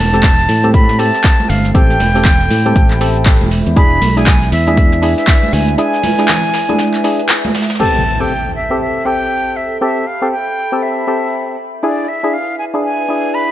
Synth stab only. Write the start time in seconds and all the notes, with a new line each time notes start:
0.13 C4 G4 A4
0.64 C4 G4 A4
0.98 C4 G4 A4
1.74 C4 G4 A4
2.15 C4 G4 A4
2.65 C4 G4 A4
3.00 C4 G4 A4
3.76 D4 E4 G#4
4.17 D4 E4 G#4
4.67 D4 E4 G#4
5.02 D4 E4 G#4
5.78 D4 E4 G#4
6.18 D4 E4 G#4
6.69 D4 E4 G#4
7.04 D4 E4 G#4
7.79 C4 G4 A4
8.20 C4 G4 A4
8.70 C4 G4 A4
9.05 C4 G4 A4
9.81 C4 G4 A4
10.22 C4 G4 A4
10.72 C4 G4 A4
11.07 C4 G4 A4
11.83 D4 E4 G#4
12.23 D4 E4 G#4
12.74 D4 E4 G#4
13.08 D4 E4 G#4